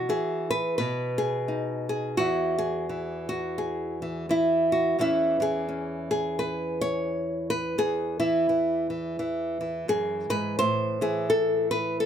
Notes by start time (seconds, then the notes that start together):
Already playing: F#4
0.09 E3 G#4
0.51 B4
0.78 B2 B4
1.18 G#4
1.48 D#4
1.89 G#4
2.17 E2 E3 E4 F#4
2.58 G#4
2.89 E3
3.29 F#4
3.58 G#4
4.02 E3
4.29 E3 E4
4.72 F#4
4.99 E2 E3 C#4 E4
5.40 E3 G#4
5.69 C#4
6.11 G#4
6.39 B4
6.81 C#5
7.50 B4
7.78 E2 G#4
8.20 E3 E4
8.49 E3
8.90 E3
9.19 E3
9.61 E3
9.88 F#2 G#4
10.30 G#2 B4
10.59 A2 C5
11.01 E3 G#4
11.30 A4
11.71 B4
12.00 A4